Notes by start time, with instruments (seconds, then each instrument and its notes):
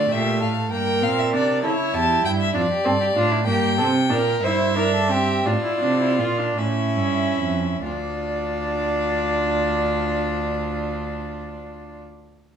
Already playing: viola A3, violin D5
0.09 cello A#2, violin G4 E5
0.40 cello A2, violin A4 F5
0.70 cello G2, viola A#3, violin A#4 G5
1.02 cello A#2, viola C4, violin F5
1.19 violin E5
1.33 cello C3, viola D4, violin D5
1.62 cello C#3, viola E4, violin A4 C#5
1.93 cello E2, violin G4 A5
2.24 cello G2, violin E4 G5
2.41 violin E5
2.54 cello F2, viola D4, violin F4 D5
2.71 violin G4
2.85 cello G2, viola C4, violin A4
3.01 violin G4
3.15 cello A2, viola D4, violin F4
3.31 violin E4
3.46 cello G2, viola A#3, violin G4 G5
3.78 cello C3, viola C4, violin A4
4.09 cello A#2, viola D4, violin A#4
4.42 cello G2, viola E4, violin C5 E5
4.75 viola D4, violin A#4
4.94 violin A4
5.10 viola C4, violin G4
5.45 cello A2, viola D4, violin F4 D5
5.64 viola E4
5.80 cello C3, viola D4
6.00 viola E4
6.19 cello A#2, viola F4
6.38 viola D4
6.57 cello A2, viola C#4, violin E4 E5
6.97 cello G2
7.38 cello F2
7.82 cello D2, viola D4, violin F4 D5